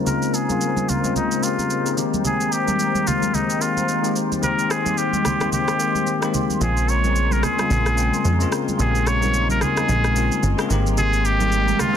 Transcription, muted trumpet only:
0.07 0.36 A#4 loud
0.35 0.91 G#4 loud
0.89 1.16 F4 medium
1.16 1.45 D#4 medium
1.44 1.98 F4 medium
2.25 2.54 G#4 loud
2.53 3.09 G4 loud
3.07 3.36 F4 loud
3.35 3.63 D#4 medium
3.62 4.16 F4 medium
4.44 4.72 A#4 loud
4.71 5.00 G#4 medium
4.98 5.52 G4 medium
5.53 6.30 G4 medium
6.62 6.91 G#4 medium
6.89 7.34 C#5 loud
7.32 7.45 A#4 medium
7.44 8.53 G#4 loud
8.80 9.09 G#4 medium
9.07 9.50 C#5 loud
9.50 9.63 A#4 medium
9.62 10.71 G#4 loud
10.98 11.27 G#4 loud
11.25 11.82 G4 loud
11.80 11.97 F4 loud

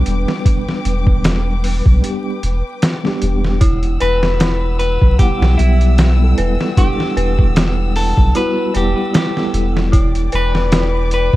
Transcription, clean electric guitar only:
4.01 4.78 B4 loud
4.79 5.19 B4 loud
5.19 5.60 G4 medium
5.57 6.33 E4 medium
6.78 7.92 G4 medium
7.96 8.36 A4 loud
8.37 8.76 B4 loud
8.77 9.15 G4 medium
9.16 9.72 G4 medium
10.35 11.09 B4 loud
11.14 11.36 B4 loud

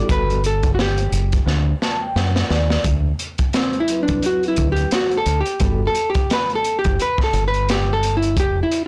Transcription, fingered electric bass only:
0.10 1.09 G1 loud
1.12 1.38 F#1 medium
1.46 1.73 D2 loud
2.16 2.42 F#2 medium
2.50 2.77 D#2 medium
2.85 3.11 D2 medium
4.09 4.20 C2 medium
4.58 4.84 D2 medium
5.26 5.41 D2 medium
5.61 5.87 G1 loud
6.85 6.96 F#1 medium
7.33 8.37 G1 medium
8.37 8.63 F1 loud

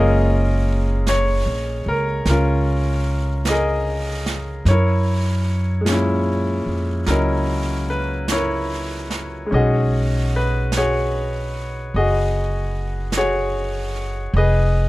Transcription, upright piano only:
0.00 4.64 G#3 medium
0.00 4.66 A#3 soft
0.00 2.29 C#4 soft
0.00 2.28 F4 soft
0.00 2.24 G#4 medium
0.00 1.87 A#4 medium
0.00 1.03 D#5 medium
1.09 1.89 C#5 medium
1.88 2.24 A#4 medium
2.29 4.64 C#4 soft
2.29 4.64 F4 soft
2.29 3.43 A#4 medium
3.49 4.64 G#4 medium
3.49 4.64 A#4 medium
3.49 4.63 D#5 medium
4.68 5.91 E4 soft
4.68 7.05 A#4 soft
4.68 6.64 C#5 medium
5.81 9.51 A#2 soft
5.81 9.45 G#3 soft
5.88 7.08 C#4 soft
5.88 7.08 E4 soft
7.06 9.52 F#3 soft
7.06 9.49 C#4 soft
7.06 8.31 E4 soft
7.06 7.85 A#4 medium
7.06 9.52 D#5 soft
7.90 8.31 B4 medium
8.32 9.49 E4 soft
8.32 9.49 A#4 soft
8.32 9.57 C#5 medium
9.46 14.31 G#3 soft
9.51 14.33 C#4 soft
9.51 14.34 D#4 soft
9.51 10.36 D#5 medium
9.55 10.76 F#4 soft
9.55 10.76 G#4 soft
10.36 10.76 B4 medium
10.77 11.96 F#4 soft
10.77 11.96 G#4 soft
10.77 11.99 C#5 medium
11.96 13.16 F#4 soft
11.96 13.16 G#4 soft
11.96 13.19 D#5 medium
13.17 14.31 F#4 soft
13.17 14.31 G#4 medium
13.17 14.39 C#5 medium
14.37 14.89 G#4 medium
14.37 14.89 B4 medium
14.37 14.89 D#5 medium

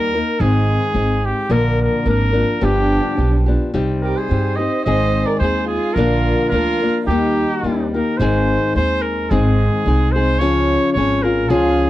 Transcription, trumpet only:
0.00 0.42 A#4 loud
0.40 1.27 G#4 medium
1.25 1.54 G4 medium
1.52 1.80 A#4 loud
1.82 2.05 A#4 medium
2.09 2.66 A#4 medium
2.64 3.48 G4 medium
4.02 4.18 A#4 medium
4.17 4.58 C5 medium
4.56 4.84 D#5 medium
4.85 5.28 D#5 loud
5.26 5.39 D5 medium
5.39 5.67 C5 loud
5.67 5.95 G#4 medium
5.94 6.49 A#4 medium
6.49 7.02 A#4 medium
7.07 7.88 G4 medium
7.93 8.19 A#4 medium
8.18 8.75 C5 medium
8.76 9.03 C5 medium
9.02 9.32 A#4 medium
9.30 10.14 G#4 medium
10.12 10.41 C5 medium
10.39 10.92 C#5 loud
10.93 11.24 C#5 loud
11.23 11.51 A#4 medium
11.50 11.90 G#4 loud

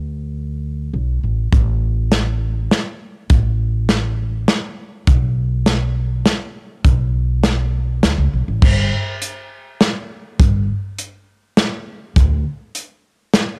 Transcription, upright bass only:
0.00 0.89 D2 medium
0.94 1.20 B1 medium
1.24 1.50 A1 medium
1.53 2.67 A1 medium
3.30 4.45 A1 medium
5.08 6.22 B1 medium
6.85 7.99 B1 medium
8.03 8.17 D2 medium
8.18 8.31 C#2 medium
8.33 8.46 B1 medium
8.48 8.61 A1 medium
8.62 8.89 G1 medium
10.40 10.66 G1 loud
12.16 12.43 D2 loud

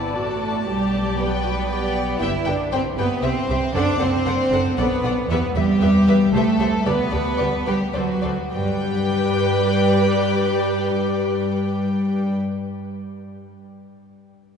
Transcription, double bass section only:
0.00 0.12 G1 medium
0.15 0.67 A1 medium
0.67 2.18 B1 medium
2.21 2.29 G1 medium
2.46 2.54 G1 medium
2.72 2.80 G1 medium
2.97 3.05 G1 medium
3.23 3.31 C2 medium
3.49 3.57 C2 medium
3.75 3.83 F#1 medium
4.00 4.08 F#1 medium
4.27 4.35 F#1 medium
4.52 4.60 F#1 medium
4.78 4.86 B1 medium
5.03 5.11 B1 medium
5.30 5.38 E2 loud
5.56 5.64 E2 medium
5.81 5.89 E2 medium
6.07 6.15 E2 medium
6.33 6.41 C2 medium
6.59 6.67 C2 medium
6.87 6.95 D2 medium
7.13 7.21 D2 medium
7.40 7.48 D2 medium
7.68 7.76 D2 medium
7.95 8.03 D2 medium
8.24 8.32 D2 medium
8.52 12.34 G2 loud

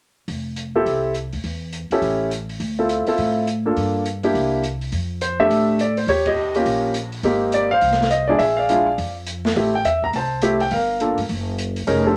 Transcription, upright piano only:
0.75 1.13 C4 medium
0.75 1.13 E4 soft
0.75 1.13 G4 medium
0.75 1.13 A4 medium
1.92 2.30 C#4 medium
1.92 2.30 E4 medium
1.92 2.30 G4 medium
1.92 2.30 A4 medium
2.79 3.06 C4 medium
2.79 3.06 E4 soft
2.79 3.06 F4 soft
2.79 3.06 A4 medium
3.07 3.45 C4 medium
3.07 3.45 E4 medium
3.07 3.46 F4 soft
3.07 3.46 A4 medium
3.66 4.03 A#3 soft
3.66 4.04 D4 soft
3.66 4.04 F4 soft
3.66 4.04 A4 medium
4.23 4.61 A#3 medium
4.23 4.62 D4 soft
4.23 4.62 E4 medium
4.23 4.62 G4 medium
5.22 5.40 C5 medium
5.39 5.77 A3 medium
5.39 5.77 C4 soft
5.39 5.78 D4 soft
5.39 5.78 G4 medium
5.39 5.94 A4 medium
5.39 5.81 E5 medium
5.81 5.99 D5 medium
5.98 6.09 C5 medium
6.09 6.26 G4 medium
6.09 6.25 C#5 medium
6.27 6.54 G4 medium
6.27 6.81 D#5 medium
6.55 6.93 A#3 medium
6.55 6.93 C#4 soft
6.55 6.94 F4 soft
6.55 6.94 G4 medium
7.24 7.67 A#3 medium
7.24 7.68 C4 medium
7.24 7.68 D#4 medium
7.24 7.68 G4 medium
7.54 7.70 D5 medium
7.71 8.26 C5 medium
7.71 8.13 F5 loud
8.11 8.28 D#5 medium
8.28 8.39 G#3 medium
8.28 8.39 D4 medium
8.28 8.39 E4 medium
8.28 8.40 G#4 medium
8.28 8.39 D5 medium
8.39 8.95 G#4 medium
8.39 8.56 E5 medium
8.56 9.13 D5 medium
8.56 9.11 F5 medium
8.69 8.85 G#3 medium
8.69 8.86 D4 soft
8.69 8.86 E4 soft
8.69 8.86 F4 medium
9.56 9.72 A3 soft
9.56 9.72 C4 soft
9.56 9.73 E4 soft
9.56 9.73 G4 medium
9.75 9.86 G5 medium
9.85 10.02 E5 medium
10.04 10.09 A#5 medium
10.16 10.70 C5 medium
10.16 10.59 A5 medium
10.42 10.59 A3 medium
10.42 10.59 C4 medium
10.42 10.59 E4 medium
10.42 10.59 G4 medium
10.61 10.73 G5 medium
10.72 11.27 A#4 medium
10.72 11.26 F5 medium
11.00 11.17 A#3 soft
11.00 11.17 D4 soft
11.00 11.17 F4 soft
11.00 11.17 A4 medium
11.87 12.04 C#4 medium
11.87 12.04 D#4 medium
11.87 12.04 G#4 medium
11.87 12.04 A#4 medium
12.06 12.17 C4 medium
12.06 12.17 D4 medium
12.06 12.17 G4 medium
12.06 12.17 A4 medium

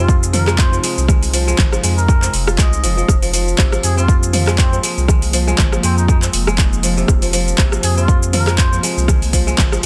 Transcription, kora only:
0.00 1.92 C3 loud
0.00 0.32 F3 medium
0.00 0.46 G#3 loud
0.00 1.78 C4 loud
0.00 0.20 D#4 medium
0.08 1.60 F4 medium
0.33 0.71 F3 loud
0.47 0.82 G#3 loud
0.72 1.32 F3 medium
0.83 1.07 G#3 loud
1.08 1.46 G#3 medium
1.33 1.71 F3 medium
1.47 1.82 G#3 loud
1.72 2.82 F3 medium
1.83 2.07 G#3 loud
2.09 2.57 G#3 medium
2.22 3.97 C4 medium
2.47 3.99 F4 medium
2.58 3.13 G#3 loud
2.83 2.96 F3 medium
2.97 3.13 F3 medium
3.22 3.32 F3 medium
3.33 3.63 F3 medium
3.58 5.92 C3 loud
3.72 4.32 F3 medium
3.97 5.77 C4 loud
4.08 5.60 F4 medium
4.33 4.71 F3 loud
4.47 4.82 G#3 loud
4.72 5.32 F3 medium
4.83 5.07 G#3 loud
5.08 5.46 G#3 medium
5.33 5.71 F3 loud
5.47 5.82 G#3 loud
5.72 6.82 F3 medium
5.83 6.07 G#3 loud
6.09 6.46 G#3 medium
6.22 7.97 C4 medium
6.47 8.46 G#3 loud
6.58 8.21 D#4 medium
6.83 7.01 F3 medium
6.97 7.57 C3 medium
7.22 7.32 F3 medium
7.33 7.63 F3 loud
7.58 9.86 C3 loud
7.72 8.32 F3 medium
7.97 9.77 C4 medium
8.08 9.59 F4 medium
8.33 8.71 F3 loud
8.47 8.82 G#3 loud
8.72 9.32 F3 medium
8.83 9.07 G#3 loud
9.08 9.46 G#3 medium
9.33 9.71 F3 loud
9.47 9.82 G#3 loud
9.72 9.86 F3 medium

